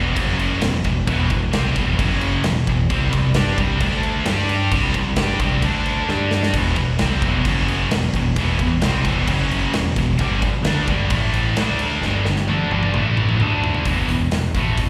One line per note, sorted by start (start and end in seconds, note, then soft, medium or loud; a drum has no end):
0.00 0.15 E1 loud
0.00 0.15 E2 medium
0.00 0.15 B2 loud
0.00 0.16 E3 loud
0.15 0.59 F#1 medium
0.15 0.60 F#2 loud
0.15 0.61 C#3 loud
0.15 0.61 F#3 loud
0.15 kick loud
0.15 crash medium
0.39 crash medium
0.61 0.83 E1 medium
0.61 0.80 E2 medium
0.61 0.80 B2 medium
0.61 snare loud
0.61 crash medium
0.84 1.06 E1 medium
0.84 1.03 E2 medium
0.84 1.03 B2 medium
0.84 kick medium
0.84 crash medium
1.07 1.28 E1 loud
1.07 1.29 E2 medium
1.07 1.29 B2 loud
1.07 1.30 E3 loud
1.07 kick loud
1.07 crash medium
1.30 1.52 E1 medium
1.30 1.49 E2 medium
1.30 1.49 B2 medium
1.30 kick medium
1.30 crash medium
1.53 1.75 C2 medium
1.53 1.75 C3 loud
1.53 1.76 G3 medium
1.53 1.76 C4 loud
1.53 snare loud
1.53 crash medium
1.76 1.97 E1 medium
1.76 1.98 E2 medium
1.76 1.98 B2 loud
1.76 1.98 E3 loud
1.76 kick loud
1.76 crash medium
1.99 2.41 F#1 loud
1.99 2.43 F#2 medium
1.99 2.44 C#3 loud
1.99 2.44 F#3 loud
1.99 kick loud
1.99 crash medium
2.21 crash medium
2.44 2.65 E1 medium
2.44 2.63 E2 medium
2.44 2.63 B2 medium
2.44 snare loud
2.44 crash medium
2.67 2.88 E1 medium
2.67 2.86 E2 medium
2.67 2.86 B2 medium
2.67 kick medium
2.67 crash medium
2.90 3.11 C2 medium
2.90 3.12 C3 loud
2.90 3.12 G3 loud
2.90 3.12 C4 loud
2.90 kick medium
2.90 crash medium
3.12 3.33 C2 medium
3.12 3.31 C3 medium
3.12 3.31 G3 medium
3.12 kick loud
3.12 crash medium
3.34 3.56 G2 medium
3.34 3.57 G3 medium
3.34 3.57 D4 loud
3.34 3.58 G4 medium
3.34 snare loud
3.34 crash medium
3.58 3.79 C2 loud
3.58 3.80 C3 medium
3.58 3.80 G3 loud
3.58 3.81 C4 loud
3.58 kick loud
3.58 crash medium
3.80 4.23 D2 loud
3.80 4.25 D3 loud
3.80 4.25 A3 loud
3.80 4.26 D4 loud
3.80 kick loud
3.80 crash medium
4.03 crash medium
4.25 4.67 G2 medium
4.25 4.71 G3 medium
4.25 4.71 D4 loud
4.25 4.72 G4 loud
4.25 snare loud
4.25 crash medium
4.49 crash medium
4.72 4.93 C2 medium
4.72 4.94 C3 medium
4.72 4.94 G3 loud
4.72 4.95 C4 loud
4.72 kick loud
4.72 crash medium
4.94 5.15 C2 medium
4.94 5.13 C3 medium
4.94 5.13 G3 medium
4.94 kick medium
4.94 crash medium
5.16 5.38 G2 medium
5.16 5.39 G3 medium
5.16 5.39 D4 medium
5.16 5.40 G4 loud
5.16 snare loud
5.16 crash medium
5.39 5.61 C2 medium
5.39 5.62 C3 medium
5.39 5.62 G3 loud
5.39 5.62 C4 loud
5.39 kick loud
5.39 crash medium
5.62 6.05 D2 medium
5.62 6.08 D3 loud
5.62 6.08 A3 loud
5.62 6.09 D4 loud
5.62 kick loud
5.62 crash medium
5.86 crash medium
6.09 6.51 G2 medium
6.09 6.53 G3 medium
6.09 6.54 D4 loud
6.09 6.54 G4 loud
6.09 snare medium
6.31 snare medium
6.43 snare medium
6.53 6.75 E1 medium
6.53 6.76 E2 medium
6.53 6.77 B2 loud
6.53 6.77 E3 loud
6.53 kick loud
6.53 crash medium
6.76 6.98 E1 medium
6.76 6.95 E2 medium
6.76 6.95 B2 medium
6.76 kick medium
6.76 crash medium
6.99 7.20 C2 medium
6.99 7.22 C3 medium
6.99 7.23 G3 medium
6.99 7.23 C4 loud
6.99 snare loud
6.99 crash medium
7.22 7.43 E1 medium
7.22 7.46 E2 medium
7.22 7.47 B2 loud
7.22 7.47 E3 loud
7.22 kick loud
7.22 crash medium
7.44 7.87 F#1 medium
7.44 7.90 F#2 medium
7.44 7.91 C#3 loud
7.44 7.91 F#3 loud
7.44 kick loud
7.44 crash medium
7.68 crash medium
7.90 8.11 E1 medium
7.90 snare loud
7.90 crash medium
7.94 8.10 E2 medium
7.94 8.11 B2 medium
8.13 8.34 E1 medium
8.13 8.33 E2 medium
8.13 8.33 B2 medium
8.13 kick medium
8.13 crash medium
8.36 8.57 E1 medium
8.36 8.60 E2 medium
8.36 8.60 B2 loud
8.36 8.60 E3 loud
8.36 kick loud
8.36 crash medium
8.59 8.80 E1 medium
8.59 8.78 E2 medium
8.59 8.79 B2 medium
8.59 kick loud
8.59 crash medium
8.82 9.03 C2 medium
8.82 9.05 C3 loud
8.82 9.05 G3 loud
8.82 9.06 C4 loud
8.82 snare loud
8.82 crash medium
9.04 9.26 E1 loud
9.04 9.27 E2 medium
9.04 9.28 B2 loud
9.04 9.28 E3 loud
9.04 kick loud
9.04 crash medium
9.27 9.70 F#1 loud
9.27 9.73 F#2 loud
9.27 9.73 C#3 loud
9.27 9.74 F#3 loud
9.27 kick loud
9.27 crash medium
9.51 crash medium
9.73 9.95 E1 medium
9.73 9.92 E2 medium
9.73 9.92 B2 medium
9.73 snare loud
9.73 crash medium
9.96 10.18 E1 medium
9.96 10.16 E2 medium
9.96 10.16 B2 medium
9.96 kick medium
9.96 crash medium
10.19 10.41 G1 loud
10.19 10.42 G2 loud
10.19 10.42 D3 medium
10.19 10.42 G3 loud
10.19 kick loud
10.19 crash medium
10.42 10.62 G1 medium
10.42 10.61 G2 medium
10.42 10.62 D3 medium
10.42 kick loud
10.42 crash medium
10.63 10.85 D2 loud
10.63 10.88 D3 medium
10.63 10.88 A3 loud
10.63 snare loud
10.63 crash medium
10.67 10.88 D4 loud
10.87 11.09 G1 loud
10.87 11.11 G2 medium
10.87 11.11 D3 medium
10.87 11.11 G3 loud
10.87 kick loud
10.87 crash medium
11.10 11.53 A1 loud
11.10 11.56 A2 loud
11.10 11.57 E3 loud
11.10 11.57 A3 loud
11.10 kick loud
11.10 crash medium
11.34 crash medium
11.56 11.99 D2 loud
11.56 12.02 D3 loud
11.56 12.03 A3 loud
11.56 12.03 D4 loud
11.56 snare loud
11.56 crash medium
11.79 crash medium
12.01 12.23 G1 loud
12.01 12.25 G2 medium
12.01 snare medium
12.05 12.26 D3 loud
12.05 12.26 G3 loud
12.25 12.46 G1 medium
12.25 12.45 G2 medium
12.25 12.45 D3 medium
12.25 snare medium
12.36 snare medium
12.48 12.69 D2 medium
12.48 12.70 D3 medium
12.48 12.71 A3 loud
12.48 12.71 D4 loud
12.48 high tom medium
12.70 12.92 G1 loud
12.70 12.93 G2 medium
12.70 12.93 D3 loud
12.70 12.94 G3 loud
12.70 high tom medium
12.83 mid tom medium
12.94 13.37 A1 medium
12.94 13.42 A2 medium
12.94 13.42 E3 loud
12.94 13.42 A3 loud
12.94 mid tom medium
13.17 mid tom medium
13.29 mid tom medium
13.40 13.82 D2 loud
13.40 13.86 D3 loud
13.40 13.86 A3 loud
13.40 13.86 D4 loud
13.40 mid tom loud
13.64 floor tom loud
13.74 floor tom medium
13.85 14.07 E1 medium
13.85 14.08 E2 medium
13.85 14.09 B2 medium
13.85 14.09 E3 loud
13.85 kick loud
13.85 open hi-hat medium
14.08 14.29 E1 medium
14.08 14.28 E2 medium
14.08 14.28 B2 medium
14.08 open hi-hat medium
14.31 14.52 E1 medium
14.31 14.51 E2 medium
14.31 14.51 B2 medium
14.31 snare loud
14.31 open hi-hat medium
14.54 14.75 A1 medium
14.54 14.77 A2 medium
14.54 14.78 E3 medium
14.54 14.77 A3 medium
14.54 kick loud
14.54 open hi-hat medium
14.77 14.89 E1 medium
14.77 14.89 E2 medium
14.77 14.89 B2 medium
14.77 kick medium
14.77 open hi-hat medium